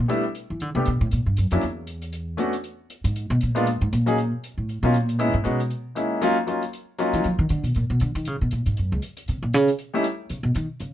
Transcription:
0.08 G3 A3 B3 D4 E4, closed hi-hat
0.35 closed hi-hat
0.50 E3
0.60 D3, closed hi-hat
0.75 C3 G3 A3 B3 D4 G4
0.85 B2, closed hi-hat
1.01 A2
1.11 A#2, closed hi-hat
1.26 G2
1.37 F#2, closed hi-hat
1.51 F2 F#3 A#3 C#4 D4 E4, closed hi-hat
1.61 E2, closed hi-hat
1.87 closed hi-hat
2.02 closed hi-hat
2.13 closed hi-hat
2.37 A3 B3 C#4 D4 F#4, closed hi-hat
2.53 closed hi-hat
2.64 closed hi-hat
2.90 closed hi-hat
3.04 G#2, closed hi-hat
3.16 closed hi-hat
3.30 B2
3.41 A#2, closed hi-hat
3.55 G#3 A#3 B3 D4 F4, closed hi-hat
3.67 closed hi-hat
3.81 G#2
3.93 A#2, closed hi-hat
4.06 F#3 A#3 C#4 D#4 G#4, closed hi-hat
4.18 closed hi-hat
4.44 closed hi-hat
4.58 A2
4.69 closed hi-hat
4.83 B2 F#3 A#3 C#4 D#4 F4
4.94 A#2, closed hi-hat
5.09 closed hi-hat
5.19 G#3 B3 C#4 D#4 E4, closed hi-hat
5.34 G#2
5.44 B2 G#3 B3 C#4 D#4 F#4, closed hi-hat
5.60 closed hi-hat
5.70 closed hi-hat
5.95 G#3 A#3 C#4 D#4 E4, closed hi-hat
6.21 F#3 A#3 C#4 D#4 F4, closed hi-hat
6.47 F#3 A#3 C#4 D#4 F4, closed hi-hat
6.63 closed hi-hat
6.73 closed hi-hat
6.99 F#3 A#3 C#4 D#4 F4, closed hi-hat
7.13 E3, closed hi-hat
7.24 F3, closed hi-hat
7.39 D#3
7.49 D3, closed hi-hat
7.63 B2, closed hi-hat
7.75 A#2, closed hi-hat
7.90 B2
8.00 D3, closed hi-hat
8.15 D#3, closed hi-hat
8.25 C#3, closed hi-hat
8.41 B2
8.51 A#2, closed hi-hat
8.66 G#2, closed hi-hat
8.77 F#2, closed hi-hat
8.92 C#2
9.02 closed hi-hat
9.17 closed hi-hat
9.28 C3, closed hi-hat
9.43 A#2
9.54 C#3, closed hi-hat
9.68 closed hi-hat
9.79 closed hi-hat
9.94 G3 A3 C#4 D#4 E4
10.04 closed hi-hat
10.30 C#3, closed hi-hat
10.43 B2
10.55 D#3, closed hi-hat
10.80 C#3, closed hi-hat

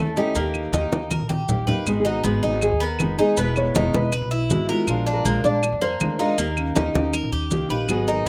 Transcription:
Already playing: E2 E3 A3 A4
0.00 A3 C#4 E4
0.16 A3 C#4 D#4 E4 G4, high conga, maracas
0.35 D#2 D#3 A#3 D#4 G4, high conga, maracas
0.54 high conga, claves, maracas
0.72 D#2 D#3 A#3 D#4 G4, high conga, maracas
0.91 D#2 A#3 D#4 G4, high conga, maracas
1.11 A#4, muted steel-string acoustic guitar stroke, high conga, claves, maracas
1.19 A#1
1.29 G4, high conga, maracas
1.48 A#1 D#3 A#3 D#4 G4, low conga, maracas
1.67 A#3 D#4 G4 B4, low conga, maracas
1.86 G#1 D#3 G#3 B3 D#4 G#4, high conga, claves, maracas
2.00 G#4
2.05 D#4 F#4, high conga, maracas
2.23 G#1 D#3 G#3 B3 D#4 G#4, high conga, maracas
2.42 G#1 B3 D#4 G#4, high conga, maracas
2.61 G#4, muted steel-string acoustic guitar stroke, high conga, claves, maracas
2.71 D#2
2.80 B3 A#4, high conga, maracas
2.99 F#1 G#3 B3 D#4 G#4, high conga, claves, maracas
3.18 G#3 B3 D#4 G#4, high conga, maracas
3.37 E1 B2 G#3 B3 E4 B4, high conga, maracas
3.56 C#5, high conga, claves, maracas
3.74 E1 B2 D#3 G#3 B3 D#4 E4, high conga, maracas
3.93 E1 G#3 B3 E4 B4, high conga, maracas
4.12 B4, muted steel-string acoustic guitar stroke, high conga, claves, maracas
4.22 B1
4.31 E4, high conga, maracas
4.49 G#1 D#3 G#3 B3 E4 F#4, high conga, maracas
4.69 D#3 G#3 B3 E4 F4 A#4, maracas
4.87 A#1 F3 G#3 D4 F4, high conga, claves, maracas
5.07 D4, high conga, maracas
5.13 A#4
5.25 A#1 F3 G#3 A#3 D4 F4, high conga, maracas
5.44 A#1 G#3 D4 F4 D5, high conga, maracas
5.62 muted steel-string acoustic guitar stroke, high conga, claves, maracas
5.72 F2
5.81 A#3 C5, high conga, maracas
6.00 D2 F3 G#3 D4 F4, high conga, claves, maracas
6.19 G#3 D4 D#4 F4 A#4, high conga, maracas
6.38 D#2 D#3 A#3 D#4 G4, high conga, maracas
6.57 C#4, high conga, claves, maracas
6.75 D#2 D#3 A#3 D#4 G4, high conga, maracas
6.94 D#2 A#3 C#4 D#4 G4, high conga, maracas
7.13 D#4 A#4, muted steel-string acoustic guitar stroke, high conga, claves, maracas
7.23 A#1
7.32 D#2 G4, high conga, maracas
7.50 C#2 D#3 A#3 D#4 G4, high conga, maracas
7.69 A#1 A#3 D#4 G4 B4, maracas
7.88 G#1 D#3 F#3 B3 D#4 F#4 G#4, high conga, claves, maracas
8.08 D#4 A#4, high conga, maracas
8.25 G#1 D#3

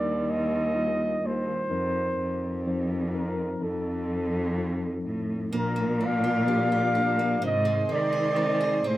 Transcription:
Already playing: D#2 D#3 G3 D4 D#4 A#4 D5
0.30 D#5
0.75 G3 A#3 D#4 F4
1.23 D#2 C5
1.70 F1 F2 F3 C4 D#4 A#4
2.19 F2
2.67 F3 C4 D#4 C5
3.14 F3 C4 D#4 A#4
3.61 F1 F2 F3 C4 D#4 A4
4.58 F3 C4 D#4 A4
5.05 A2
5.52 A#1 A#2 F3 A#3 D4 A#4 D5 F5 D6
5.56 A#4
5.76 A#3
6.01 D4
6.05 F5
6.24 F4
6.48 F3 A#3 D4 G4
6.72 F4
6.95 D4
7.19 A#3
7.41 G#2 C3 D#3 G#3 C4 D#4 G#4 C5 C6
7.46 D#5
7.65 G#3
7.89 D#3 C4 D5
8.13 G#4
8.36 G#3 C4 D#4 C5
8.61 G#4
8.84 A2 C4 C5

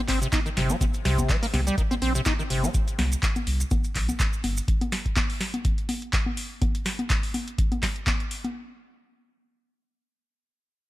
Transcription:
0.08 G1 C4, kick, clap, open hi-hat
0.22 C3, closed hi-hat, maracas
0.32 D#4, kick, clap, closed hi-hat, high conga, maracas
0.46 D#3, closed hi-hat, maracas
0.57 G1 C3, snare, open hi-hat
0.69 G3, high conga, maracas
0.81 C3, kick, closed hi-hat, high conga, maracas
0.94 closed hi-hat, maracas
1.05 C2 C3, snare, open hi-hat
1.18 kick, closed hi-hat, high conga, maracas
1.29 F3, kick, clap, closed hi-hat, maracas
1.43 A#3, open hi-hat, maracas
1.53 C2 C3, snare, open hi-hat, high conga
1.67 G3, closed hi-hat, maracas
1.78 D#3, kick, closed hi-hat, maracas
1.91 C4, closed hi-hat, high conga, maracas
2.02 A#1 C4, open hi-hat
2.15 C3, closed hi-hat, maracas
2.25 D#4, kick, clap, closed hi-hat, high conga, maracas
2.39 D#3, maracas
2.50 G1 C3, open hi-hat
2.63 G3, high conga, maracas
2.74 kick, closed hi-hat, maracas
2.88 closed hi-hat, maracas
2.99 C2, snare, open hi-hat, high conga
3.12 closed hi-hat, maracas
3.23 kick, clap, closed hi-hat, maracas
3.36 closed hi-hat, high conga, maracas
3.47 C2, open hi-hat
3.60 closed hi-hat, maracas
3.71 kick, closed hi-hat, high conga, maracas
3.84 closed hi-hat, maracas
3.95 A#1, kick, clap, open hi-hat
4.09 closed hi-hat, high conga, maracas
4.20 kick, clap, closed hi-hat, maracas
4.33 maracas
4.44 G1, open hi-hat, high conga
4.57 maracas
4.68 kick, closed hi-hat
4.81 closed hi-hat, high conga
4.92 snare, open hi-hat
5.06 kick, closed hi-hat
5.16 kick, clap, closed hi-hat, high conga
5.30 open hi-hat
5.41 snare, open hi-hat
5.54 closed hi-hat, high conga
5.65 kick, closed hi-hat
5.78 closed hi-hat
5.89 open hi-hat, high conga
6.02 closed hi-hat
6.13 kick, clap, closed hi-hat
6.26 high conga
6.37 open hi-hat
6.62 kick, closed hi-hat, high conga
6.75 closed hi-hat
6.86 snare, open hi-hat
6.99 closed hi-hat, high conga
7.10 kick, clap, closed hi-hat
7.23 open hi-hat
7.34 open hi-hat, high conga
7.48 closed hi-hat
7.58 kick, closed hi-hat
7.72 closed hi-hat, high conga
7.83 kick, snare, clap, open hi-hat
7.96 closed hi-hat
8.07 kick, clap, closed hi-hat, high conga
8.20 closed hi-hat
8.31 open hi-hat
8.44 closed hi-hat, high conga

